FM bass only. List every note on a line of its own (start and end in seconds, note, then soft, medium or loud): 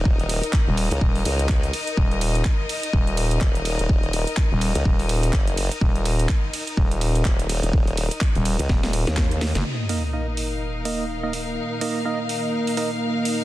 0.67 0.89 D#1 loud
1.01 1.24 D#1 loud
1.97 2.44 D#1 loud
2.93 3.40 D#1 medium
4.51 4.73 D#1 loud
4.85 5.32 D#1 loud
5.81 6.28 D#1 loud
6.77 7.24 D#1 medium
8.35 8.57 D#1 loud
8.69 9.05 D#1 loud
9.55 9.64 F#1 loud